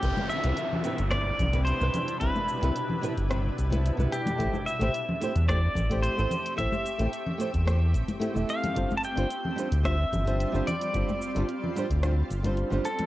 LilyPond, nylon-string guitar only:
\new Staff \with { instrumentName = "Nylon-string guitar" } { \time 4/4 \key c \major \tempo 4 = 110 <c c' e' b'>16 r8 <c c' e' b'>16 r8 <c c' e' b'>16 r16 <c c' e' b'>16 r8 <c c' e' b'>8 <c c' e' b'>16 r8 | <c c' e' b'>16 r8 <c c' e' b'>16 r8 <c c' e' b'>16 r16 <c c' e' b'>16 r8 <c c' e' b'>8 <c c' e' b'>16 r8 | <a e' g' c''>16 r8 <a e' g' c''>16 r8 <a e' g' c''>16 r16 <a e' g' c''>16 r8 <a e' g' c''>8 <a e' g' c''>16 r8 | <a e' g' c''>16 r8 <a e' g' c''>16 r8 <a e' g' c''>16 r16 <a e' g' c''>16 r8. <a e' g' c''>16 <a e' g' e''>8. |
<g d' f' c''>16 r8 <g d' f' c''>16 r8 <g d' f' c''>16 r16 <g d' f' c''>16 r8 <g d' f' c''>8 <g d' f' c''>16 r8 | <g d' f' c''>16 r8 <g d' f' c''>16 r8 <g d' f' c''>16 r16 <g d' f' c''>16 r8 <g d' f' c''>8 <g d' f' c''>16 r8 | }